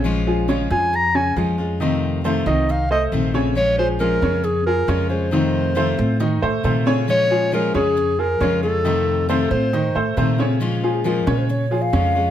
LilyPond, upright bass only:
\new Staff \with { instrumentName = "Upright bass" } { \clef bass \time 4/4 \key bes \minor \tempo 4 = 136 bes,,4. f,4. f,4~ | f,4. c,4. bes,,4~ | bes,,4. f,4. f,4~ | f,4. a,4 a,8 bes,4~ |
bes,4. f,4. f,4~ | f,4. a,4 a,8 bes,4~ | bes,4. bes,4. f,4 | }